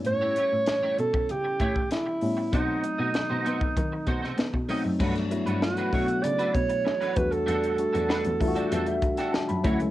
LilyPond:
<<
  \new Staff \with { instrumentName = "Alto saxophone" } { \time 4/4 \key e \dorian \tempo 4 = 97 cis''4. a'8 g'4 e'4 | dis'2. r4 | r4 fis'4 d''8 cis''4 b'16 a'16~ | a'2~ a'8. r4 r16 | }
  \new Staff \with { instrumentName = "Clean electric guitar" } { \time 4/4 \key e \dorian r16 <a e' g' cis''>16 <a e' g' cis''>16 r8 <a e' g' cis''>16 r4 <a e' g' cis''>16 r4 r16 | <a dis' fis' c''>8 r16 <a dis' fis' dis''>16 r16 <a dis' fis' c''>16 <a dis' fis' c''>16 r8. <a dis' fis' c''>16 <a dis' fis' c''>16 r8 <a dis' fis' dis''>16 r16 | <a d' fis' b'>16 r8 <a d' fis' b'>16 r16 <a d' fis' b'>16 <a d' fis' cis''>16 r8 <a d' fis' b'>16 r8. <a d' fis' b'>16 r8 | <g d' fis' a'>8 r16 <g d' fis' a'>16 <g d' fis' b'>16 r8 <g d' fis' a'>16 <g d' fis' a'>16 r8 <g d' fis' a'>16 r8 <a e' fis' cis''>16 r16 | }
  \new Staff \with { instrumentName = "Tine electric piano" } { \time 4/4 \key e \dorian r1 | r1 | r1 | r4. e''16 d''16 e''16 e''8 g''16 a''16 b''8. | }
  \new Staff \with { instrumentName = "Tine electric piano" } { \time 4/4 \key e \dorian <g b cis' e'>4 r2 r8 <g b cis' e'>8 | <fis a c' dis'>4. r2 <fis a c' dis'>8 | <fis a b d'>8 <fis a b e'>4 <fis a b fis'>4. r8 <g a d' fis'>8~ | <g a d' fis'>8 <g a d' fis'>4 <g a d' f' fis'>4. r8 <fis a cis' e'>8 | }
  \new Staff \with { instrumentName = "Cello" } { \clef bass \time 4/4 \key e \dorian a,8 r16 a,16 r8 b,8 cis8 a,8 r8 a,8 | b,8 r16 b,16 r16 b,16 b8 dis16 r16 b,16 c16 b16 b,16 r16 fis,16 | g,8 r16 g,16 r8 b,8 cis8 b,8 r8 e,8 | e,8 r16 e,16 r16 e,16 e8 e,8 r8. fis,16 d,16 cis,16 | }
  \new DrumStaff \with { instrumentName = "Drums" } \drummode { \time 4/4 hh8 hh8 <hh sn>8 hh16 bd16 hh8 <hh bd>16 bd16 <hh sn>8 hho8 | <hh bd>8 hh8 <hh sn>8 hh16 bd16 <hh bd>8 <hh bd>16 sn16 <hh sn>16 bd16 hho8 | <cymc bd>16 <hh sn>16 hh16 hh16 sn16 hh16 <hho bd>16 hh16 hh16 hh16 <hh bd>16 hh16 sn16 hh16 <hh bd>16 hh16 | hh16 hh16 hh16 hh16 sn16 hh16 <hho bd>16 hh16 hh16 hh16 <hh bd>16 <hh sn>16 sn16 hh16 <hh bd>16 hh16 | }
>>